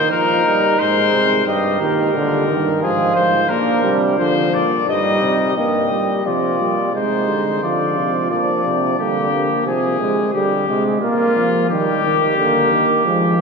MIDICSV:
0, 0, Header, 1, 5, 480
1, 0, Start_track
1, 0, Tempo, 681044
1, 1035, Time_signature, 3, 2, 24, 8
1, 9451, End_track
2, 0, Start_track
2, 0, Title_t, "Trumpet"
2, 0, Program_c, 0, 56
2, 0, Note_on_c, 0, 72, 77
2, 77, Note_off_c, 0, 72, 0
2, 81, Note_on_c, 0, 70, 80
2, 559, Note_on_c, 0, 72, 87
2, 570, Note_off_c, 0, 70, 0
2, 1036, Note_off_c, 0, 72, 0
2, 1039, Note_on_c, 0, 75, 66
2, 1271, Note_off_c, 0, 75, 0
2, 1276, Note_on_c, 0, 70, 66
2, 1973, Note_off_c, 0, 70, 0
2, 1990, Note_on_c, 0, 68, 73
2, 2221, Note_off_c, 0, 68, 0
2, 2225, Note_on_c, 0, 72, 69
2, 2464, Note_on_c, 0, 70, 73
2, 2474, Note_off_c, 0, 72, 0
2, 2778, Note_off_c, 0, 70, 0
2, 2952, Note_on_c, 0, 72, 72
2, 3201, Note_on_c, 0, 74, 67
2, 3212, Note_off_c, 0, 72, 0
2, 3442, Note_off_c, 0, 74, 0
2, 3448, Note_on_c, 0, 75, 76
2, 3920, Note_off_c, 0, 75, 0
2, 3928, Note_on_c, 0, 75, 62
2, 4387, Note_off_c, 0, 75, 0
2, 4415, Note_on_c, 0, 74, 59
2, 4886, Note_off_c, 0, 74, 0
2, 4904, Note_on_c, 0, 72, 60
2, 5371, Note_off_c, 0, 72, 0
2, 5381, Note_on_c, 0, 74, 63
2, 5850, Note_off_c, 0, 74, 0
2, 5859, Note_on_c, 0, 74, 61
2, 6328, Note_off_c, 0, 74, 0
2, 6337, Note_on_c, 0, 67, 63
2, 6803, Note_off_c, 0, 67, 0
2, 6817, Note_on_c, 0, 68, 64
2, 7279, Note_off_c, 0, 68, 0
2, 7286, Note_on_c, 0, 67, 62
2, 7644, Note_off_c, 0, 67, 0
2, 7764, Note_on_c, 0, 65, 74
2, 8232, Note_off_c, 0, 65, 0
2, 8243, Note_on_c, 0, 67, 78
2, 9451, Note_off_c, 0, 67, 0
2, 9451, End_track
3, 0, Start_track
3, 0, Title_t, "Flugelhorn"
3, 0, Program_c, 1, 56
3, 0, Note_on_c, 1, 63, 76
3, 1007, Note_off_c, 1, 63, 0
3, 1040, Note_on_c, 1, 67, 75
3, 1504, Note_off_c, 1, 67, 0
3, 1520, Note_on_c, 1, 67, 68
3, 1870, Note_off_c, 1, 67, 0
3, 1990, Note_on_c, 1, 65, 69
3, 2455, Note_off_c, 1, 65, 0
3, 2462, Note_on_c, 1, 62, 79
3, 3225, Note_off_c, 1, 62, 0
3, 3437, Note_on_c, 1, 63, 68
3, 3896, Note_off_c, 1, 63, 0
3, 3923, Note_on_c, 1, 67, 63
3, 4384, Note_off_c, 1, 67, 0
3, 4414, Note_on_c, 1, 65, 59
3, 4886, Note_off_c, 1, 65, 0
3, 4898, Note_on_c, 1, 63, 60
3, 5368, Note_off_c, 1, 63, 0
3, 5376, Note_on_c, 1, 65, 63
3, 5847, Note_off_c, 1, 65, 0
3, 5855, Note_on_c, 1, 62, 59
3, 6326, Note_off_c, 1, 62, 0
3, 6338, Note_on_c, 1, 58, 62
3, 6803, Note_off_c, 1, 58, 0
3, 9451, End_track
4, 0, Start_track
4, 0, Title_t, "Trombone"
4, 0, Program_c, 2, 57
4, 0, Note_on_c, 2, 51, 67
4, 75, Note_on_c, 2, 53, 66
4, 86, Note_off_c, 2, 51, 0
4, 317, Note_off_c, 2, 53, 0
4, 324, Note_on_c, 2, 55, 70
4, 556, Note_off_c, 2, 55, 0
4, 562, Note_on_c, 2, 56, 70
4, 1028, Note_off_c, 2, 56, 0
4, 1034, Note_on_c, 2, 55, 60
4, 1268, Note_off_c, 2, 55, 0
4, 1275, Note_on_c, 2, 51, 86
4, 1508, Note_off_c, 2, 51, 0
4, 1512, Note_on_c, 2, 50, 85
4, 1745, Note_off_c, 2, 50, 0
4, 1750, Note_on_c, 2, 51, 82
4, 1994, Note_on_c, 2, 53, 85
4, 2004, Note_off_c, 2, 51, 0
4, 2347, Note_off_c, 2, 53, 0
4, 2466, Note_on_c, 2, 58, 86
4, 2701, Note_off_c, 2, 58, 0
4, 2706, Note_on_c, 2, 55, 86
4, 2945, Note_off_c, 2, 55, 0
4, 2950, Note_on_c, 2, 53, 85
4, 3262, Note_off_c, 2, 53, 0
4, 3445, Note_on_c, 2, 55, 83
4, 3900, Note_off_c, 2, 55, 0
4, 3925, Note_on_c, 2, 58, 65
4, 4166, Note_on_c, 2, 55, 65
4, 4176, Note_off_c, 2, 58, 0
4, 4403, Note_off_c, 2, 55, 0
4, 4407, Note_on_c, 2, 53, 69
4, 4643, Note_off_c, 2, 53, 0
4, 4647, Note_on_c, 2, 55, 65
4, 4884, Note_off_c, 2, 55, 0
4, 4888, Note_on_c, 2, 56, 69
4, 5363, Note_off_c, 2, 56, 0
4, 5373, Note_on_c, 2, 53, 60
4, 5845, Note_off_c, 2, 53, 0
4, 5851, Note_on_c, 2, 53, 64
4, 6324, Note_off_c, 2, 53, 0
4, 6335, Note_on_c, 2, 55, 60
4, 6563, Note_off_c, 2, 55, 0
4, 6567, Note_on_c, 2, 58, 60
4, 6803, Note_off_c, 2, 58, 0
4, 6814, Note_on_c, 2, 53, 65
4, 7045, Note_off_c, 2, 53, 0
4, 7051, Note_on_c, 2, 56, 71
4, 7283, Note_off_c, 2, 56, 0
4, 7290, Note_on_c, 2, 55, 77
4, 7521, Note_off_c, 2, 55, 0
4, 7532, Note_on_c, 2, 56, 79
4, 7762, Note_off_c, 2, 56, 0
4, 7767, Note_on_c, 2, 58, 86
4, 8234, Note_off_c, 2, 58, 0
4, 8248, Note_on_c, 2, 55, 69
4, 8550, Note_off_c, 2, 55, 0
4, 8723, Note_on_c, 2, 58, 81
4, 9171, Note_off_c, 2, 58, 0
4, 9204, Note_on_c, 2, 56, 69
4, 9432, Note_off_c, 2, 56, 0
4, 9451, End_track
5, 0, Start_track
5, 0, Title_t, "Euphonium"
5, 0, Program_c, 3, 58
5, 74, Note_on_c, 3, 46, 65
5, 546, Note_off_c, 3, 46, 0
5, 554, Note_on_c, 3, 44, 62
5, 788, Note_off_c, 3, 44, 0
5, 792, Note_on_c, 3, 48, 62
5, 1024, Note_off_c, 3, 48, 0
5, 1029, Note_on_c, 3, 43, 74
5, 1265, Note_off_c, 3, 43, 0
5, 1273, Note_on_c, 3, 46, 65
5, 1507, Note_off_c, 3, 46, 0
5, 1511, Note_on_c, 3, 46, 70
5, 1744, Note_off_c, 3, 46, 0
5, 1747, Note_on_c, 3, 43, 66
5, 1981, Note_off_c, 3, 43, 0
5, 1985, Note_on_c, 3, 44, 70
5, 2218, Note_off_c, 3, 44, 0
5, 2227, Note_on_c, 3, 44, 68
5, 2460, Note_off_c, 3, 44, 0
5, 2464, Note_on_c, 3, 46, 74
5, 2700, Note_off_c, 3, 46, 0
5, 2710, Note_on_c, 3, 48, 65
5, 2947, Note_off_c, 3, 48, 0
5, 2951, Note_on_c, 3, 50, 73
5, 3190, Note_off_c, 3, 50, 0
5, 3194, Note_on_c, 3, 46, 68
5, 3433, Note_off_c, 3, 46, 0
5, 3437, Note_on_c, 3, 43, 67
5, 3669, Note_off_c, 3, 43, 0
5, 3674, Note_on_c, 3, 48, 66
5, 3916, Note_off_c, 3, 48, 0
5, 3919, Note_on_c, 3, 43, 61
5, 4150, Note_off_c, 3, 43, 0
5, 4162, Note_on_c, 3, 46, 48
5, 4404, Note_off_c, 3, 46, 0
5, 4410, Note_on_c, 3, 48, 60
5, 4648, Note_off_c, 3, 48, 0
5, 4653, Note_on_c, 3, 46, 58
5, 4887, Note_off_c, 3, 46, 0
5, 4891, Note_on_c, 3, 48, 58
5, 5136, Note_on_c, 3, 50, 55
5, 5147, Note_off_c, 3, 48, 0
5, 5370, Note_off_c, 3, 50, 0
5, 5374, Note_on_c, 3, 50, 73
5, 5619, Note_on_c, 3, 48, 63
5, 5629, Note_off_c, 3, 50, 0
5, 5856, Note_on_c, 3, 46, 67
5, 5866, Note_off_c, 3, 48, 0
5, 6092, Note_off_c, 3, 46, 0
5, 6096, Note_on_c, 3, 48, 72
5, 6331, Note_off_c, 3, 48, 0
5, 6337, Note_on_c, 3, 50, 75
5, 6688, Note_off_c, 3, 50, 0
5, 6808, Note_on_c, 3, 48, 69
5, 7042, Note_off_c, 3, 48, 0
5, 7046, Note_on_c, 3, 48, 64
5, 7280, Note_off_c, 3, 48, 0
5, 7290, Note_on_c, 3, 50, 64
5, 7516, Note_off_c, 3, 50, 0
5, 7520, Note_on_c, 3, 48, 68
5, 7755, Note_off_c, 3, 48, 0
5, 7761, Note_on_c, 3, 46, 64
5, 7996, Note_off_c, 3, 46, 0
5, 8004, Note_on_c, 3, 53, 64
5, 8238, Note_off_c, 3, 53, 0
5, 8243, Note_on_c, 3, 51, 81
5, 8477, Note_off_c, 3, 51, 0
5, 8484, Note_on_c, 3, 51, 79
5, 8716, Note_off_c, 3, 51, 0
5, 8722, Note_on_c, 3, 50, 78
5, 8954, Note_off_c, 3, 50, 0
5, 8961, Note_on_c, 3, 51, 79
5, 9194, Note_off_c, 3, 51, 0
5, 9198, Note_on_c, 3, 53, 86
5, 9451, Note_off_c, 3, 53, 0
5, 9451, End_track
0, 0, End_of_file